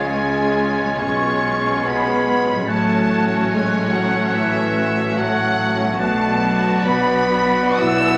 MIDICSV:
0, 0, Header, 1, 12, 480
1, 0, Start_track
1, 0, Key_signature, 3, "minor"
1, 0, Tempo, 904977
1, 526, Tempo, 853485
1, 1006, Tempo, 829876
1, 1491, Time_signature, 4, 2, 24, 8
1, 3886, Tempo, 940439
1, 4576, End_track
2, 0, Start_track
2, 0, Title_t, "Flute"
2, 0, Program_c, 0, 73
2, 43, Note_on_c, 0, 92, 54
2, 517, Note_off_c, 0, 92, 0
2, 526, Note_on_c, 0, 92, 54
2, 996, Note_off_c, 0, 92, 0
2, 1008, Note_on_c, 0, 92, 57
2, 1492, Note_on_c, 0, 90, 63
2, 1500, Note_off_c, 0, 92, 0
2, 2912, Note_off_c, 0, 90, 0
2, 2915, Note_on_c, 0, 90, 64
2, 3384, Note_off_c, 0, 90, 0
2, 3394, Note_on_c, 0, 90, 67
2, 4576, Note_off_c, 0, 90, 0
2, 4576, End_track
3, 0, Start_track
3, 0, Title_t, "Violin section"
3, 0, Program_c, 1, 48
3, 37, Note_on_c, 1, 80, 81
3, 514, Note_off_c, 1, 80, 0
3, 527, Note_on_c, 1, 85, 81
3, 1004, Note_on_c, 1, 83, 88
3, 1006, Note_off_c, 1, 85, 0
3, 1489, Note_off_c, 1, 83, 0
3, 1491, Note_on_c, 1, 81, 89
3, 1955, Note_off_c, 1, 81, 0
3, 1965, Note_on_c, 1, 80, 83
3, 2198, Note_off_c, 1, 80, 0
3, 2202, Note_on_c, 1, 78, 78
3, 2437, Note_off_c, 1, 78, 0
3, 2437, Note_on_c, 1, 76, 86
3, 2917, Note_on_c, 1, 78, 100
3, 2918, Note_off_c, 1, 76, 0
3, 3390, Note_on_c, 1, 81, 100
3, 3395, Note_off_c, 1, 78, 0
3, 3873, Note_off_c, 1, 81, 0
3, 3881, Note_on_c, 1, 83, 100
3, 4372, Note_on_c, 1, 88, 119
3, 4373, Note_off_c, 1, 83, 0
3, 4576, Note_off_c, 1, 88, 0
3, 4576, End_track
4, 0, Start_track
4, 0, Title_t, "Oboe"
4, 0, Program_c, 2, 68
4, 40, Note_on_c, 2, 73, 52
4, 513, Note_off_c, 2, 73, 0
4, 516, Note_on_c, 2, 73, 62
4, 991, Note_off_c, 2, 73, 0
4, 1004, Note_on_c, 2, 73, 61
4, 1475, Note_off_c, 2, 73, 0
4, 1478, Note_on_c, 2, 73, 61
4, 2890, Note_off_c, 2, 73, 0
4, 2917, Note_on_c, 2, 73, 71
4, 3385, Note_off_c, 2, 73, 0
4, 3396, Note_on_c, 2, 74, 65
4, 4576, Note_off_c, 2, 74, 0
4, 4576, End_track
5, 0, Start_track
5, 0, Title_t, "Clarinet"
5, 0, Program_c, 3, 71
5, 34, Note_on_c, 3, 65, 57
5, 512, Note_off_c, 3, 65, 0
5, 522, Note_on_c, 3, 65, 54
5, 994, Note_off_c, 3, 65, 0
5, 1007, Note_on_c, 3, 65, 65
5, 1486, Note_on_c, 3, 66, 70
5, 1495, Note_off_c, 3, 65, 0
5, 2910, Note_off_c, 3, 66, 0
5, 2914, Note_on_c, 3, 66, 65
5, 3381, Note_off_c, 3, 66, 0
5, 3384, Note_on_c, 3, 66, 72
5, 4576, Note_off_c, 3, 66, 0
5, 4576, End_track
6, 0, Start_track
6, 0, Title_t, "Violin section"
6, 0, Program_c, 4, 48
6, 0, Note_on_c, 4, 73, 55
6, 43, Note_on_c, 4, 56, 54
6, 154, Note_on_c, 4, 61, 49
6, 156, Note_off_c, 4, 56, 0
6, 278, Note_off_c, 4, 61, 0
6, 284, Note_on_c, 4, 65, 54
6, 407, Note_off_c, 4, 65, 0
6, 412, Note_on_c, 4, 61, 54
6, 530, Note_off_c, 4, 61, 0
6, 532, Note_on_c, 4, 56, 52
6, 644, Note_off_c, 4, 56, 0
6, 647, Note_on_c, 4, 59, 53
6, 768, Note_off_c, 4, 59, 0
6, 769, Note_on_c, 4, 61, 52
6, 887, Note_off_c, 4, 61, 0
6, 891, Note_on_c, 4, 65, 54
6, 1008, Note_off_c, 4, 65, 0
6, 1008, Note_on_c, 4, 61, 56
6, 1130, Note_off_c, 4, 61, 0
6, 1131, Note_on_c, 4, 59, 54
6, 1252, Note_off_c, 4, 59, 0
6, 1252, Note_on_c, 4, 56, 58
6, 1371, Note_on_c, 4, 59, 54
6, 1372, Note_off_c, 4, 56, 0
6, 1468, Note_off_c, 4, 73, 0
6, 1490, Note_off_c, 4, 59, 0
6, 1492, Note_on_c, 4, 57, 60
6, 1492, Note_on_c, 4, 73, 64
6, 1601, Note_off_c, 4, 57, 0
6, 1608, Note_on_c, 4, 61, 54
6, 1726, Note_off_c, 4, 61, 0
6, 1726, Note_on_c, 4, 66, 57
6, 1844, Note_off_c, 4, 66, 0
6, 1850, Note_on_c, 4, 61, 58
6, 1967, Note_off_c, 4, 61, 0
6, 1967, Note_on_c, 4, 57, 60
6, 2085, Note_off_c, 4, 57, 0
6, 2089, Note_on_c, 4, 61, 54
6, 2205, Note_off_c, 4, 61, 0
6, 2208, Note_on_c, 4, 66, 61
6, 2320, Note_on_c, 4, 61, 58
6, 2323, Note_off_c, 4, 66, 0
6, 2437, Note_off_c, 4, 61, 0
6, 2438, Note_on_c, 4, 57, 60
6, 2547, Note_off_c, 4, 57, 0
6, 2559, Note_on_c, 4, 61, 57
6, 2671, Note_on_c, 4, 66, 62
6, 2677, Note_off_c, 4, 61, 0
6, 2793, Note_on_c, 4, 61, 60
6, 2795, Note_off_c, 4, 66, 0
6, 2913, Note_on_c, 4, 57, 65
6, 2917, Note_off_c, 4, 61, 0
6, 3037, Note_off_c, 4, 57, 0
6, 3037, Note_on_c, 4, 61, 58
6, 3148, Note_on_c, 4, 66, 66
6, 3158, Note_off_c, 4, 61, 0
6, 3268, Note_on_c, 4, 61, 60
6, 3272, Note_off_c, 4, 66, 0
6, 3373, Note_off_c, 4, 73, 0
6, 3391, Note_off_c, 4, 61, 0
6, 3631, Note_on_c, 4, 71, 67
6, 3633, Note_on_c, 4, 66, 69
6, 4116, Note_off_c, 4, 66, 0
6, 4116, Note_off_c, 4, 71, 0
6, 4122, Note_on_c, 4, 66, 66
6, 4123, Note_on_c, 4, 71, 67
6, 4576, Note_off_c, 4, 66, 0
6, 4576, Note_off_c, 4, 71, 0
6, 4576, End_track
7, 0, Start_track
7, 0, Title_t, "Harp"
7, 0, Program_c, 5, 46
7, 0, Note_on_c, 5, 49, 48
7, 0, Note_on_c, 5, 56, 41
7, 0, Note_on_c, 5, 61, 37
7, 0, Note_on_c, 5, 65, 41
7, 429, Note_on_c, 5, 47, 47
7, 445, Note_off_c, 5, 56, 0
7, 451, Note_on_c, 5, 56, 40
7, 471, Note_off_c, 5, 61, 0
7, 477, Note_on_c, 5, 61, 39
7, 493, Note_off_c, 5, 65, 0
7, 496, Note_off_c, 5, 49, 0
7, 500, Note_on_c, 5, 65, 41
7, 1385, Note_on_c, 5, 45, 56
7, 1411, Note_on_c, 5, 54, 48
7, 1429, Note_off_c, 5, 61, 0
7, 1436, Note_on_c, 5, 61, 46
7, 1457, Note_off_c, 5, 47, 0
7, 1464, Note_on_c, 5, 66, 48
7, 1469, Note_off_c, 5, 56, 0
7, 1495, Note_off_c, 5, 65, 0
7, 3291, Note_on_c, 5, 47, 57
7, 3310, Note_off_c, 5, 54, 0
7, 3317, Note_on_c, 5, 54, 48
7, 3342, Note_on_c, 5, 62, 51
7, 3362, Note_off_c, 5, 45, 0
7, 3362, Note_off_c, 5, 66, 0
7, 3369, Note_on_c, 5, 66, 49
7, 3387, Note_off_c, 5, 61, 0
7, 4576, Note_off_c, 5, 47, 0
7, 4576, Note_off_c, 5, 54, 0
7, 4576, Note_off_c, 5, 62, 0
7, 4576, Note_off_c, 5, 66, 0
7, 4576, End_track
8, 0, Start_track
8, 0, Title_t, "Viola section"
8, 0, Program_c, 6, 48
8, 0, Note_on_c, 6, 56, 56
8, 0, Note_on_c, 6, 61, 54
8, 1470, Note_off_c, 6, 61, 0
8, 1471, Note_off_c, 6, 56, 0
8, 1487, Note_on_c, 6, 61, 64
8, 1489, Note_on_c, 6, 54, 62
8, 3371, Note_off_c, 6, 61, 0
8, 3372, Note_off_c, 6, 54, 0
8, 3636, Note_on_c, 6, 62, 63
8, 3637, Note_on_c, 6, 54, 66
8, 4118, Note_off_c, 6, 62, 0
8, 4119, Note_off_c, 6, 54, 0
8, 4126, Note_on_c, 6, 62, 66
8, 4127, Note_on_c, 6, 54, 67
8, 4576, Note_off_c, 6, 54, 0
8, 4576, Note_off_c, 6, 62, 0
8, 4576, End_track
9, 0, Start_track
9, 0, Title_t, "French horn section"
9, 0, Program_c, 7, 60
9, 46, Note_on_c, 7, 56, 68
9, 518, Note_off_c, 7, 56, 0
9, 530, Note_on_c, 7, 61, 76
9, 1008, Note_off_c, 7, 61, 0
9, 1012, Note_on_c, 7, 59, 81
9, 1395, Note_off_c, 7, 59, 0
9, 1494, Note_on_c, 7, 57, 78
9, 1956, Note_off_c, 7, 57, 0
9, 1968, Note_on_c, 7, 56, 72
9, 2197, Note_on_c, 7, 54, 76
9, 2205, Note_off_c, 7, 56, 0
9, 2435, Note_off_c, 7, 54, 0
9, 2439, Note_on_c, 7, 52, 83
9, 2919, Note_off_c, 7, 52, 0
9, 2922, Note_on_c, 7, 54, 83
9, 3397, Note_off_c, 7, 54, 0
9, 3401, Note_on_c, 7, 57, 86
9, 3879, Note_off_c, 7, 57, 0
9, 3889, Note_on_c, 7, 59, 89
9, 4367, Note_off_c, 7, 59, 0
9, 4378, Note_on_c, 7, 64, 108
9, 4576, Note_off_c, 7, 64, 0
9, 4576, End_track
10, 0, Start_track
10, 0, Title_t, "Bassoon"
10, 0, Program_c, 8, 70
10, 40, Note_on_c, 8, 56, 50
10, 515, Note_off_c, 8, 56, 0
10, 525, Note_on_c, 8, 56, 59
10, 996, Note_off_c, 8, 56, 0
10, 1000, Note_on_c, 8, 56, 56
10, 1487, Note_on_c, 8, 57, 64
10, 1496, Note_off_c, 8, 56, 0
10, 2912, Note_off_c, 8, 57, 0
10, 2915, Note_on_c, 8, 57, 64
10, 3384, Note_off_c, 8, 57, 0
10, 3400, Note_on_c, 8, 59, 70
10, 4576, Note_off_c, 8, 59, 0
10, 4576, End_track
11, 0, Start_track
11, 0, Title_t, "Cello section"
11, 0, Program_c, 10, 48
11, 0, Note_on_c, 10, 49, 57
11, 506, Note_off_c, 10, 49, 0
11, 526, Note_on_c, 10, 47, 60
11, 1485, Note_on_c, 10, 45, 67
11, 1490, Note_off_c, 10, 47, 0
11, 3369, Note_off_c, 10, 45, 0
11, 3395, Note_on_c, 10, 47, 77
11, 3826, Note_off_c, 10, 47, 0
11, 3884, Note_on_c, 10, 47, 73
11, 4317, Note_off_c, 10, 47, 0
11, 4373, Note_on_c, 10, 47, 84
11, 4576, Note_off_c, 10, 47, 0
11, 4576, End_track
12, 0, Start_track
12, 0, Title_t, "Double bass section"
12, 0, Program_c, 11, 48
12, 0, Note_on_c, 11, 37, 56
12, 508, Note_off_c, 11, 37, 0
12, 524, Note_on_c, 11, 35, 61
12, 1489, Note_on_c, 11, 33, 61
12, 1490, Note_off_c, 11, 35, 0
12, 3372, Note_off_c, 11, 33, 0
12, 3393, Note_on_c, 11, 35, 74
12, 3824, Note_off_c, 11, 35, 0
12, 3887, Note_on_c, 11, 35, 75
12, 4319, Note_off_c, 11, 35, 0
12, 4375, Note_on_c, 11, 35, 84
12, 4576, Note_off_c, 11, 35, 0
12, 4576, End_track
0, 0, End_of_file